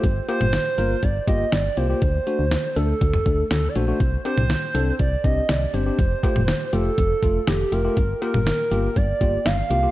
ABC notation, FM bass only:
X:1
M:4/4
L:1/16
Q:1/4=121
K:Gm
V:1 name="FM bass" clef=bass
G,,,2 z G,,,2 z G,,,2 G,,,2 G,,,2 G,,,2 C,,2 | D,,2 z D,,2 z D,,2 D,,2 D,,2 D,,2 B,,,2 | C,,2 z C,,2 z C,,2 C,,2 C,,2 C,,2 G,,,2 | F,,,2 z F,,,2 z F,,,2 F,,,2 F,,,2 F,,,2 F,,,2 |
G,,,2 z G,,,2 z G,,,2 G,,,2 G,,,2 G,,,2 C,,2 |]